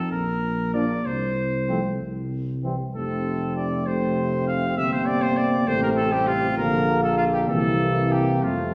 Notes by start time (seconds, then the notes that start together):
Already playing: A4
0.12 A#1 A#4
0.74 F3 A#3 D4 D5
1.06 C2 C5
1.69 F3 A3 C4
2.01 C2
2.63 E3 G3 C4
2.95 F1 C3 A3 C4 A4
3.56 D5
3.87 C3 A3 C4 C5
4.47 F5
4.77 G1 C3 A#3 C4 E5
4.92 C5
5.07 D5
5.22 C5
5.37 D5
5.67 A1 C3 A3 C4 C5
5.82 A#4
5.97 A4
6.12 G3 G4
6.27 F4
6.57 A#1 D3 F3 A#3 A#4
7.03 A4
7.17 F4
7.33 G4
7.48 C2 C3 E3 A#3 A4
8.11 G4
8.43 F2 C3 F3 A3 F4